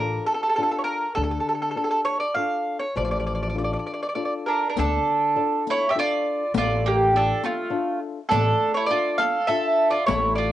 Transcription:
0.00 0.16 A1 medium
0.00 0.46 D4 soft
0.00 0.46 F4 soft
0.00 0.46 A4 soft
0.00 0.26 A#4 medium
0.26 0.33 A4 medium
0.34 0.41 A4 medium
0.43 0.48 A4 medium
0.49 0.54 A4 medium
0.56 1.05 D4 soft
0.56 1.06 F4 soft
0.56 0.61 A4 medium
0.56 1.06 A4 soft
0.63 0.70 A4 medium
0.71 0.78 A4 medium
0.78 0.83 C#5 medium
0.84 1.13 A#4 medium
1.15 1.36 D2 loud
1.15 1.74 D3 medium
1.15 1.22 A4 medium
1.23 1.30 A4 medium
1.31 1.39 A4 medium
1.40 1.47 A4 soft
1.49 1.53 A4 medium
1.55 1.61 A4 soft
1.62 1.70 A4 medium
1.71 1.76 A4 medium
1.76 2.23 D4 soft
1.76 2.24 F4 soft
1.76 2.24 A4 soft
1.76 1.83 A4 soft
1.84 1.90 A4 medium
1.91 2.00 A4 medium
2.05 2.19 C#5 loud
2.20 2.34 D5 medium
2.35 2.83 D4 soft
2.35 2.84 F4 soft
2.35 2.84 A4 soft
2.35 2.77 F5 loud
2.80 2.94 C#5 medium
2.96 3.74 A1 loud
2.96 3.54 F3 medium
2.96 3.04 D5 medium
3.05 3.10 D5 medium
3.11 3.18 D5 medium
3.20 3.25 D5 medium
3.27 3.33 D5 medium
3.35 3.41 D5 soft
3.43 3.48 D5 medium
3.50 3.56 D5 medium
3.55 4.03 D4 soft
3.55 4.04 F4 soft
3.55 4.04 A4 soft
3.55 3.63 D5 medium
3.64 3.71 D5 soft
3.73 3.78 D5 medium
3.79 3.85 D5 soft
3.87 3.92 D5 medium
3.94 4.01 D5 medium
4.03 4.08 D5 medium
4.09 4.14 D5 medium
4.15 4.64 D4 soft
4.15 4.64 F4 soft
4.15 4.65 A4 soft
4.15 4.24 D5 medium
4.25 4.33 D5 medium
4.46 4.68 D4 medium
4.46 4.68 A#4 medium
4.70 4.76 D4 soft
4.70 4.77 A#4 medium
4.76 4.97 D2 medium
4.76 5.34 D3 medium
4.76 5.63 D4 medium
4.76 5.63 A4 medium
4.76 riq medium
5.36 5.83 D4 soft
5.36 5.83 F4 soft
5.36 5.84 A4 soft
5.67 5.89 E4 medium
5.67 5.91 C#5 loud
5.67 riq soft
5.89 5.95 G4 medium
5.89 5.96 E5 medium
5.95 6.42 D4 soft
5.95 6.42 F4 soft
5.95 6.52 F4 medium
5.95 6.43 A4 soft
6.00 6.52 D5 loud
6.54 7.30 A1 loud
6.54 7.11 A3 medium
6.54 6.83 F4 medium
6.54 6.86 D5 loud
6.54 riq medium
6.86 7.12 A#3 medium
6.86 7.13 G4 medium
7.12 7.59 D4 soft
7.12 7.60 F4 soft
7.12 7.60 A4 soft
7.16 7.42 D4 medium
7.16 7.42 A4 medium
7.44 7.98 A3 medium
7.44 7.99 F4 medium
7.44 riq soft
7.70 8.18 D4 medium
7.70 8.18 F4 soft
7.70 8.18 A4 soft
8.29 8.50 A1 loud
8.29 8.87 A3 medium
8.29 8.72 D4 medium
8.29 8.71 A4 loud
8.29 riq medium
8.74 8.89 E4 medium
8.74 8.86 C#5 medium
8.86 9.37 D4 soft
8.86 9.15 D5 loud
8.91 9.17 F4 medium
8.91 9.37 F4 soft
8.91 9.37 A4 soft
9.18 9.47 A4 medium
9.18 9.49 F5 loud
9.18 riq soft
9.47 9.96 D4 medium
9.47 9.96 F4 soft
9.47 9.90 A4 medium
9.47 9.96 A4 medium
9.47 9.90 E5 loud
9.90 10.06 F4 medium
9.90 10.05 D5 medium
10.06 10.52 A1 loud
10.06 10.52 A3 medium
10.06 10.35 E4 medium
10.06 10.35 C#5 medium
10.06 riq medium
10.35 10.52 F4 medium
10.35 10.52 D5 medium

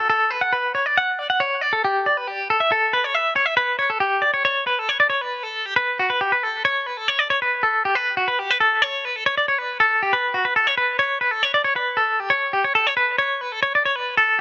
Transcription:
0.10 0.30 A4 medium
0.30 0.41 B4 medium
0.41 0.52 F#5 medium
0.53 0.74 B4 medium
0.75 0.86 C#5 medium
0.86 0.96 D5 medium
0.97 1.19 F#5 medium
1.19 1.29 D5 medium
1.30 1.40 F#5 medium
1.40 1.61 C#5 medium
1.61 1.72 D5 medium
1.73 1.83 A4 medium
1.84 2.05 G4 medium
2.06 2.17 D5 medium
2.17 2.27 B4 medium
2.27 2.49 G4 medium
2.50 2.60 A4 medium
2.60 2.70 E5 medium
2.72 2.92 A4 medium
2.93 3.04 B4 medium
3.04 3.15 C#5 medium
3.15 3.35 E5 medium
3.36 3.46 C#5 medium
3.46 3.56 E5 medium
3.57 3.78 B4 medium
3.79 3.90 C#5 medium
3.90 4.00 A4 medium
4.00 4.22 G4 medium
4.22 4.33 D5 medium
4.34 4.44 C#5 medium
4.45 4.66 C#5 medium
4.67 4.79 B4 medium
4.79 4.89 A4 medium
4.89 4.99 C#5 medium
5.00 5.09 D5 medium
5.10 5.21 C#5 medium
5.21 5.43 B4 medium
5.43 5.66 A4 medium
5.66 5.76 G4 medium
5.76 5.97 B4 medium
5.99 6.09 F#4 medium
6.10 6.20 B4 medium
6.21 6.31 G4 medium
6.32 6.43 B4 medium
6.43 6.64 A4 medium
6.65 6.86 C#5 medium
6.86 6.97 B4 medium
6.97 7.08 A4 medium
7.08 7.19 C#5 medium
7.19 7.29 D5 medium
7.30 7.40 C#5 medium
7.42 7.62 B4 medium
7.63 7.84 A4 medium
7.85 7.95 G4 medium
7.95 8.16 B4 medium
8.17 8.27 F#4 medium
8.28 8.39 B4 medium
8.39 8.51 G4 medium
8.51 8.60 B4 medium
8.60 8.82 A4 medium
8.82 9.05 C#5 medium
9.05 9.16 B4 medium
9.16 9.26 A4 medium
9.26 9.36 C#5 medium
9.38 9.47 D5 medium
9.48 9.58 C#5 medium
9.58 9.80 B4 medium
9.80 10.02 A4 medium
10.03 10.13 G4 medium
10.13 10.34 B4 medium
10.34 10.45 F#4 medium
10.45 10.56 B4 medium
10.56 10.67 A4 medium
10.67 10.77 C#5 medium
10.78 10.99 B4 medium
10.99 11.21 C#5 medium
11.21 11.31 B4 medium
11.31 11.43 A4 medium
11.43 11.54 C#5 medium
11.54 11.64 D5 medium
11.64 11.76 C#5 medium
11.76 11.98 B4 medium
11.97 12.20 A4 medium
12.20 12.31 G4 medium
12.30 12.52 C#5 medium
12.53 12.64 G4 medium
12.64 12.75 C#5 medium
12.75 12.87 A4 medium
12.87 12.96 C#5 medium
12.97 13.18 B4 medium
13.18 13.41 C#5 medium
13.41 13.52 B4 medium
13.52 13.62 A4 medium
13.63 13.73 C#5 medium
13.75 13.85 D5 medium
13.85 13.96 C#5 medium
13.96 14.17 B4 medium
14.17 14.39 A4 medium

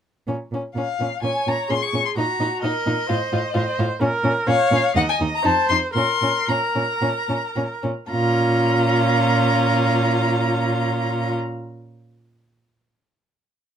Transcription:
0.27 0.35 A#2 medium
0.27 0.36 C#4 soft
0.52 0.60 A#2 soft
0.52 0.62 C#4 soft
0.75 0.83 A#2 soft
0.75 0.85 C#4 soft
0.75 1.21 F5 medium
1.00 1.08 A#2 soft
1.00 1.09 C#4 soft
1.23 1.31 A#2 soft
1.23 1.32 C#4 soft
1.23 1.70 C#5 soft
1.23 1.50 G#5 medium
1.47 1.55 A#2 soft
1.47 1.56 C#4 soft
1.47 1.72 A#5 medium
1.69 1.78 A#2 soft
1.69 1.78 C#4 soft
1.69 2.18 G#4 medium
1.69 1.84 C6 medium
1.82 2.05 C#6 medium
1.93 2.01 A#2 soft
1.93 2.02 C#4 soft
2.05 2.10 C6 medium
2.16 2.24 A#2 medium
2.16 2.26 D#4 soft
2.16 2.64 F#4 soft
2.16 2.63 A#5 medium
2.40 2.48 A#2 soft
2.40 2.48 D#4 soft
2.63 2.71 A#2 medium
2.63 2.72 D#4 medium
2.63 3.10 A#4 medium
2.63 3.76 D#5 medium
2.86 2.94 A#2 medium
2.86 2.94 D#4 soft
3.09 3.18 A2 medium
3.09 3.17 F4 medium
3.09 3.55 C5 medium
3.33 3.41 A2 medium
3.33 3.41 F4 soft
3.54 3.64 A2 medium
3.54 3.62 F4 medium
3.54 4.01 C5 medium
3.79 3.87 A2 medium
3.79 3.87 F4 medium
4.01 4.09 A#2 medium
4.01 4.09 C#4 medium
4.01 4.49 A#4 medium
4.24 4.32 A#2 medium
4.24 4.32 C#4 medium
4.47 4.55 A#2 medium
4.47 4.55 C#4 medium
4.47 4.96 C#5 medium
4.47 4.93 F5 medium
4.71 4.79 A#2 medium
4.71 4.80 C#4 medium
4.96 5.04 D#2 medium
4.96 5.04 D#4 medium
4.96 5.44 D#5 medium
4.96 5.01 F#5 medium
5.09 5.17 G#5 medium
5.21 5.29 D#2 medium
5.21 5.29 D#4 soft
5.35 5.47 A#5 medium
5.44 5.53 F2 medium
5.44 5.52 D#4 medium
5.44 5.95 C5 medium
5.44 5.68 A5 medium
5.69 5.78 F2 medium
5.69 5.79 D#4 soft
5.69 5.77 C6 medium
5.94 6.03 A#2 medium
5.94 6.05 C#4 soft
5.94 7.80 A#4 medium
5.94 6.51 C6 medium
6.22 6.30 A#2 soft
6.22 6.31 C#4 soft
6.48 6.56 A#2 medium
6.48 6.57 C#4 soft
6.48 7.84 A#5 medium
6.75 6.84 A#2 medium
6.75 6.83 C#4 soft
7.02 7.10 A#2 medium
7.02 7.10 C#4 soft
7.29 7.37 A#2 soft
7.29 7.37 C#4 soft
7.56 7.64 A#2 medium
7.56 7.64 C#4 soft
7.83 7.92 A#2 soft
7.83 7.91 C#4 soft
8.11 11.33 A#2 medium
8.11 11.33 C#4 medium
8.11 11.34 F4 medium
8.11 11.33 A#5 medium

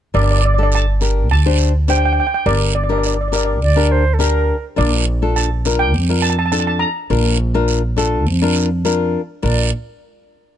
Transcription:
0.14 1.31 G1 loud
0.14 0.40 D4 medium
0.14 0.40 G4 medium
0.14 0.41 A#4 medium
0.14 0.22 D5 medium
0.14 long guiro medium
0.23 0.30 D5 medium
0.31 0.37 D5 medium
0.38 0.44 D5 medium
0.45 0.53 D5 medium
0.54 0.84 D4 medium
0.54 0.61 D5 medium
0.58 0.84 G4 medium
0.58 0.84 A4 medium
0.63 0.69 D5 medium
0.72 1.30 A5 loud
0.72 short guiro medium
1.01 1.27 D4 medium
1.01 1.27 G4 medium
1.01 1.27 A#4 medium
1.01 short guiro medium
1.30 2.19 D2 medium
1.30 1.90 A5 loud
1.30 long guiro medium
1.46 1.72 D4 medium
1.46 1.72 G4 medium
1.46 1.72 C5 medium
1.58 short guiro medium
1.88 2.23 D4 medium
1.88 2.23 G4 medium
1.88 2.23 C5 medium
1.88 1.96 G5 medium
1.88 short guiro medium
1.97 2.04 G5 medium
2.06 2.11 G5 medium
2.13 2.19 G5 medium
2.20 2.26 G5 medium
2.27 2.33 G5 medium
2.34 2.41 G5 medium
2.46 3.62 G1 loud
2.46 2.72 D4 medium
2.46 2.72 G4 medium
2.46 2.72 A#4 medium
2.46 2.74 D5 medium
2.46 long guiro medium
2.75 2.82 D5 medium
2.84 2.91 D5 soft
2.89 3.16 D4 medium
2.89 3.16 G4 medium
2.89 3.16 A#4 medium
2.89 2.97 D5 medium
2.98 3.05 D5 medium
3.04 3.13 D5 medium
3.04 short guiro medium
3.14 3.20 D5 soft
3.21 3.27 D5 medium
3.28 3.59 D4 medium
3.28 3.35 D5 soft
3.32 3.59 G4 medium
3.32 3.59 A#4 medium
3.32 3.43 D5 medium
3.32 short guiro medium
3.45 3.52 D5 medium
3.62 4.50 D2 medium
3.62 3.93 D5 loud
3.62 long guiro medium
3.76 4.03 D4 medium
3.76 4.03 G4 medium
3.76 4.03 A#4 loud
3.92 4.15 C5 loud
4.14 4.22 A4 medium
4.19 4.55 D4 medium
4.19 4.55 G4 medium
4.19 4.55 A#4 loud
4.19 4.65 A#4 medium
4.19 short guiro medium
4.76 5.94 A#1 loud
4.76 5.04 D4 medium
4.76 5.04 F4 medium
4.76 5.04 A#4 medium
4.76 5.32 D5 medium
4.76 long guiro medium
5.22 5.48 D4 medium
5.22 5.48 F4 medium
5.22 5.49 A4 medium
5.36 5.82 A5 medium
5.36 short guiro medium
5.65 5.92 D4 medium
5.65 5.92 F4 medium
5.65 5.92 A#4 medium
5.65 short guiro medium
5.79 6.24 G5 loud
5.94 6.83 F2 medium
5.94 long guiro medium
6.09 6.36 D4 medium
6.09 6.36 F4 medium
6.09 6.36 A#4 medium
6.22 6.29 A5 loud
6.22 short guiro medium
6.30 6.38 A5 medium
6.39 6.44 A5 medium
6.46 6.51 A5 medium
6.52 6.87 D4 medium
6.52 6.88 F4 medium
6.52 6.88 A4 medium
6.52 6.58 A5 medium
6.52 short guiro medium
6.60 6.66 A5 medium
6.67 6.76 A5 medium
6.79 8.80 A#5 loud
7.10 8.26 A#1 loud
7.10 7.37 D4 medium
7.10 7.37 F4 medium
7.10 7.37 A#4 medium
7.10 long guiro medium
7.54 7.81 D4 medium
7.54 7.81 F4 medium
7.54 7.81 A#4 medium
7.68 short guiro medium
7.96 8.24 D4 medium
7.96 8.24 F4 medium
7.96 8.24 A4 loud
7.96 short guiro medium
8.26 9.15 F2 medium
8.26 long guiro medium
8.42 8.68 D4 medium
8.42 8.68 F4 medium
8.42 8.68 A#4 loud
8.56 short guiro medium
8.85 9.20 D4 medium
8.85 9.20 F4 medium
8.85 9.20 A#4 loud
8.85 short guiro medium
9.42 9.70 A#1 medium
9.42 9.70 D4 medium
9.42 9.70 F4 medium
9.42 9.70 A#4 medium
9.42 9.70 D5 medium
9.42 long guiro medium

